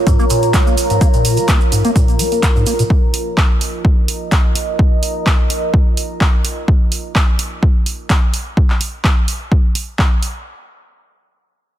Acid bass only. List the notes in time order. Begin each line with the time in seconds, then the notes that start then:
0.07 G#2
0.19 A#3
0.30 A#2
0.54 A#3
0.67 A#3
0.90 G#2
1.01 A#3
1.14 A#2
1.37 A#3
1.48 A#3
1.72 G#2
1.85 A#3
1.96 A#2
2.19 A#3
2.32 A#3
2.56 G#2
2.67 A#3
2.79 A#2